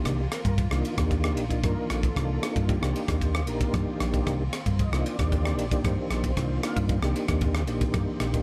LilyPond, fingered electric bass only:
\new Staff \with { instrumentName = "Fingered electric bass" } { \clef bass \time 4/4 \key c \minor \tempo 4 = 114 c,8 r16 g,8 c,16 r16 ees,8. bes,,8 g,16 r16 bes,,8 | c,8 r16 g,8 c,16 r16 ees,8. bes,,8 g,16 r16 bes,,8 | c,8 r16 g,8 c,16 r16 ees,8. bes,,8 g,16 r16 bes,,8 | c,8 r16 g,8 c,16 r16 ees,8. bes,,8 g,16 r16 bes,,8 | }